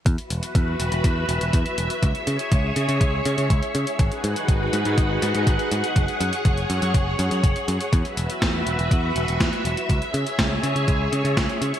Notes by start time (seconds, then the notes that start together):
0.06 E2 F#4 B4 E5, kick, closed hi-hat
0.18 closed hi-hat
0.30 E1, closed hi-hat
0.43 closed hi-hat
0.55 E2, kick, closed hi-hat
0.80 E1, closed hi-hat
0.92 E1, closed hi-hat
1.04 E2, kick, closed hi-hat
1.29 E1, closed hi-hat
1.41 E1, closed hi-hat
1.53 E2, kick, closed hi-hat
1.66 closed hi-hat
1.78 E1, closed hi-hat
1.90 closed hi-hat
2.03 C#2 G#4 C#5, kick, closed hi-hat
2.15 closed hi-hat
2.27 C#3, closed hi-hat
2.39 closed hi-hat
2.52 C#2, kick, closed hi-hat
2.76 C#3, closed hi-hat
2.89 C#3, closed hi-hat
3.01 C#2, kick, closed hi-hat
3.25 C#3, closed hi-hat
3.38 C#3, closed hi-hat
3.50 C#2, kick, closed hi-hat
3.62 closed hi-hat
3.75 C#3, closed hi-hat
3.87 closed hi-hat
3.99 G#1 D#4 F#4 G#4 B4 F#5, kick, closed hi-hat
4.12 closed hi-hat
4.24 G#2, closed hi-hat
4.36 closed hi-hat
4.48 G#1, kick, closed hi-hat
4.73 G#2, closed hi-hat
4.85 G#2, closed hi-hat
4.98 G#1, kick, closed hi-hat
5.22 G#2, closed hi-hat
5.35 G#2, closed hi-hat
5.47 G#1, kick, closed hi-hat
5.59 closed hi-hat
5.71 G#2, closed hi-hat
5.84 closed hi-hat
5.96 F#1 C#5, kick, closed hi-hat
6.08 closed hi-hat
6.21 F#2, closed hi-hat
6.33 closed hi-hat
6.45 F#1, kick, closed hi-hat
6.57 closed hi-hat
6.70 F#2, closed hi-hat
6.82 F#2, closed hi-hat
6.94 F#1, kick, closed hi-hat
7.19 F#2, closed hi-hat
7.31 F#2, closed hi-hat
7.43 F#1, kick, closed hi-hat
7.56 closed hi-hat
7.68 F#2, closed hi-hat
7.81 closed hi-hat
7.93 E2 F#4 B4 E5, kick, closed hi-hat
8.05 closed hi-hat
8.17 E1, closed hi-hat
8.30 closed hi-hat
8.42 E2, kick, snare, closed hi-hat
8.66 E1, closed hi-hat
8.79 E1, closed hi-hat
8.91 E2, kick, closed hi-hat
9.16 E1, closed hi-hat
9.28 E1, closed hi-hat
9.40 E2, kick, snare, closed hi-hat
9.53 closed hi-hat
9.65 E1, closed hi-hat
9.77 closed hi-hat
9.89 C#2 G#4 C#5, kick, closed hi-hat
10.02 closed hi-hat
10.14 C#3, closed hi-hat
10.27 closed hi-hat
10.39 C#2, kick, snare, closed hi-hat
10.63 C#3, closed hi-hat
10.75 C#3, closed hi-hat
10.88 C#2, kick, closed hi-hat
11.12 C#3, closed hi-hat
11.25 C#3, closed hi-hat
11.37 C#2, kick, snare, closed hi-hat
11.49 closed hi-hat
11.61 C#3, closed hi-hat
11.74 closed hi-hat